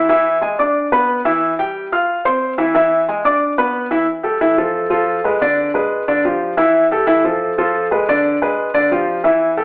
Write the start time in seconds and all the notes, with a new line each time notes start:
0.09 E3 E4 E5
0.41 G#3 G#4 G#5
0.59 D4 D5 D6
0.92 B3 B4 B5
1.25 E3 E4 E5
1.59 G3 G4 G5
1.92 F4 F5 F6
2.25 C4 C5 C6
2.58 E3 E4 E5
2.75 E3 E4 E5
3.08 G#3 G#4 G#5
3.25 D4 D5 D6
3.58 B3 B4 B5
3.91 E3 E4 E5
4.23 G3 G4 A4
4.41 E3 E4 E5
4.58 F3 F4 A4
4.90 F3 F4 A4
5.24 G#3 G#4 B4
5.41 D3 D4 D5
5.74 G#3 G#4 B4
6.08 D3 D4 D5
6.25 F3 F4 G4
6.57 E3 E4 E5
6.91 G3 G4 A4
7.07 E3 E4 E5
7.24 F3 F4 A4
7.58 F3 F4 A4
7.91 G#3 G#4 B4
8.08 D3 D4 D5
8.42 G#3 G#4 B4
8.74 D3 D4 D5
8.91 F3 F4 G4
9.24 E3 E4 E5
9.57 G3 G4 A4